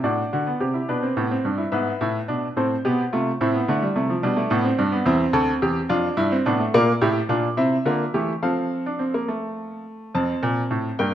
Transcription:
grand piano
0.04 A2 D4 F#4 D5
0.33 D3 F#4
0.47 B3
0.60 C3 C4 G4
0.74 E4
0.89 B2 D4 B4
1.03 C4
1.17 A2 B3
1.31 C4
1.45 G2 D4
1.58 E4
1.72 G#2 B3 B4 E5
2.01 A2 E4
2.28 B2 D4
2.56 A2 C4 A4 C5
2.85 B2 B3 G4
3.13 C3 A3 F4
3.41 A2 C4 E4
3.54 B3
3.68 D3 A3
3.82 G3
3.96 C3 A3
4.10 F3
4.23 B2 G3 D4
4.37 A3
4.50 A2 B3
4.64 C4
4.79 G2 D4
4.92 B3
5.06 E2 C4 E4
5.33 D2 A4
5.62 E2 G4
5.89 F2 D4 F4
6.17 G2 E4
6.32 C4
6.46 A2 B3 D4
6.60 A3
6.74 A#2 A#3 F4 D5
7.01 A2 E4 G4
7.29 A#2 D4 F4
7.57 C3 C4 E4 E5
7.85 D3 A#3 F4
8.14 E3 A3 G4
8.43 F3 C4 A4 F5
8.86 D4
8.99 C4
9.14 A#3
9.28 A3
10.14 F2 C4 A5
10.43 A#2
10.71 A2
10.99 G2 A#3 G5

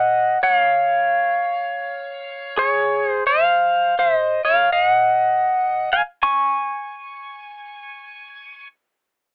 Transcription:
pedal steel guitar
Already playing: D#5 F#5
0.43 C#5 F#5
0.54 F5
2.57 G#4 C#5
3.09 C5
3.27 C5 F5
3.99 C5 E5
4.17 D#5
4.45 C#5 F5
4.72 D#5 F5
4.84 F#5
5.93 F5 G#5
6.23 G#5 C#6

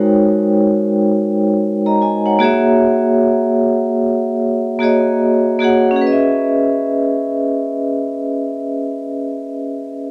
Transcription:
vibraphone
Already playing: G#3 D#4 F#4 A#4 C#5 G5
1.86 D#5 A#5
2.02 D#5 G#5
2.26 C#5 F#5
2.39 A#3 F#4 G#4 C#5
2.44 E5
4.79 A#3 F#4 G#4 C#5
4.84 D#5
5.59 A#3 F#4 G#4 C#5
5.64 F#5
5.91 C#4
5.96 G#4
6.01 B4
6.07 D#5
6.12 E5

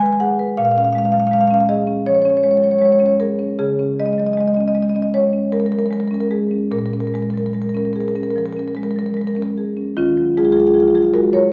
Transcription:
marimba
Already playing: G#3
0.02 B4 G#5
0.13 G#5
0.20 G#4 F#5
0.39 B4
0.57 A#2 F5
0.65 F5
0.71 F5
0.77 C#4 F5
0.85 F5
0.93 G#3 F5
0.98 F5
1.05 F5
1.12 F#3 F5
1.20 F5
1.27 F5
1.32 G#3 F5
1.41 F5
1.48 C#4 F5
1.54 F5
1.60 F5
1.69 G#4 D#5
1.87 C#4
2.06 F3 C#5
2.14 C#5
2.22 C#4 C#5
2.29 C#5
2.37 C#5
2.43 G#3 C#5
2.51 C#5
2.57 C#5
2.62 F#3 C#5
2.71 C#5
2.78 G#3 C#5
2.85 C#5
2.92 C#5
2.99 C#4 C#5
3.06 C#5
3.20 G#4 A#4
3.39 C#4
3.59 C#3 G#4
3.79 C#4
3.99 G#3 D#5
4.06 D#5
4.13 D#5
4.18 F#3 D#5
4.26 D#5
4.33 D#5
4.38 G#3 D#5
4.48 D#5
4.54 C#4 D#5
4.61 D#5
4.68 D#5
4.75 G#3 D#5
4.82 D#5
4.89 D#5
4.94 C#4 D#5
5.02 D#5
5.14 G#3 C#5
5.33 C#4
5.52 G#3 A#4
5.60 A#4
5.66 A#4
5.72 F#3 A#4
5.79 A#4
5.86 A#4
5.91 G#3 A#4
6.00 A#4
6.07 C#4 A#4
6.14 A#4
6.20 A#4
6.31 G#3 G#4
6.51 C#4
6.71 A#2 A#4
6.78 A#4
6.86 A#4
6.93 C#4 A#4
7.00 A#4
7.07 A#4
7.14 G#3 A#4
7.23 A#4
7.30 F#3 A#4
7.38 A#4
7.46 A#4
7.53 G#3 A#4
7.62 A#4
7.69 A#4
7.75 C#4 A#4
7.85 A#4
7.93 G#4 A#4
8.01 A#4
8.08 A#4
8.15 C#4 A#4
8.23 A#4
8.31 A#4
8.36 F3 A#4
8.45 A#4
8.53 C#4 A#4
8.59 A#4
8.68 A#4
8.75 G#3 A#4
8.83 A#4
8.91 A#4
8.96 F#3 A#4
9.06 A#4
9.14 G#3 A#4
9.21 A#4
9.27 A#4
9.35 C#4 A#4
9.42 A#4
9.58 G#4
9.77 C#4
9.97 D#3 C#4 F4
10.17 F#3
10.37 G#3 F4 G#4
10.45 F4 G#4
10.52 F4 G#4
10.57 F#3 F4 G#4
10.67 F4 G#4
10.74 F3 F4 G#4
10.80 F4 G#4
10.88 F4 G#4
10.95 F#3 F4 G#4
11.03 F4 G#4
11.14 G#3 F#4 A#4
11.33 F#3 A#4 C#5

